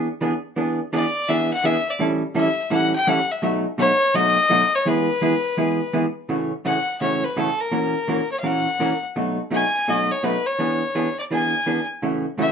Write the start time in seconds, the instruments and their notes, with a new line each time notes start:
0.21 hollow-body jazz guitar E3 B3 D4 G#4
0.56 hollow-body jazz guitar E3 B3 D4 G#4
0.93 hollow-body jazz guitar E3 B3 D4 G#4, fiddle D5
1.29 hollow-body jazz guitar E3 B3 D4 G#4, fiddle E5
1.53 fiddle F#5
1.64 hollow-body jazz guitar E3 B3 D4 G#4, fiddle E5
1.90 fiddle D5
1.99 hollow-body jazz guitar A2 E3 G3 C#4 E4 A4
2.35 hollow-body jazz guitar A2 E3 G3 C#4 E4 A4
2.39 fiddle E5
2.70 hollow-body jazz guitar A2 E3 G3 C#4 E4 A4, fiddle F#5
2.96 fiddle G5
3.07 hollow-body jazz guitar A2 E3 G3 C#4 E4 A4, fiddle F#5
3.32 fiddle E5
3.42 hollow-body jazz guitar B2 F#3 A3 D#4 F#4
3.78 hollow-body jazz guitar B2 F#3 A3 D#4 F#4, fiddle C#5
4.14 hollow-body jazz guitar B2 F#3 A3 D#4 F#4, fiddle D#5
4.50 hollow-body jazz guitar B2 F#3 A3 D#4 F#4
4.75 fiddle C#5
4.86 hollow-body jazz guitar E3 G#3 B3 E4 G#4, fiddle B4
5.22 hollow-body jazz guitar E3 G#3 B3 E4 G#4
5.57 hollow-body jazz guitar E3 G#3 B3 E4 G#4
5.93 hollow-body jazz guitar E3 G#3 B3 E4 G#4
6.29 hollow-body jazz guitar A2 C#3 E3 A3 C#4 F#4
6.65 hollow-body jazz guitar A2 C#3 E3 A3 C#4 F#4, fiddle F#5
7.01 hollow-body jazz guitar A2 C#3 E3 A3 C#4 F#4, fiddle C#5
7.24 fiddle B4
7.37 hollow-body jazz guitar A2 C#3 E3 A3 C#4 F#4, fiddle A4
7.60 fiddle A#4
7.72 hollow-body jazz guitar A#2 E3 A#3 C#4 F#4 A#4
8.08 hollow-body jazz guitar A#2 E3 A#3 C#4 F#4 A#4
8.32 fiddle C#5
8.40 hollow-body jazz guitar A#2 E3 A#3, fiddle F5
8.44 hollow-body jazz guitar C#4 F#4 A#4, fiddle F#5
8.80 hollow-body jazz guitar A#2 E3 A#3 C#4 F#4 A#4
9.16 hollow-body jazz guitar B2 F#3 A3 D#4 F#4
9.51 hollow-body jazz guitar B2 F#3 A3 D#4 F#4
9.55 fiddle G#5
9.88 hollow-body jazz guitar B2 F#3 A3 D#4 F#4, fiddle D#5
10.12 fiddle C#5
10.23 hollow-body jazz guitar B2 F#3 A3 D#4 F#4, fiddle B4
10.46 fiddle C#5
10.59 hollow-body jazz guitar E3 B3 D4 G#4
10.95 hollow-body jazz guitar E3 B3 D4 G#4
11.19 fiddle D5
11.31 hollow-body jazz guitar E3 B3 D4 G#4, fiddle G#5
11.66 hollow-body jazz guitar E3 B3 D4 G#4
12.02 hollow-body jazz guitar A2 C#3 E3 A3 C#4 F#4
12.38 hollow-body jazz guitar A2 C#3 E3 A3 C#4 F#4, fiddle E5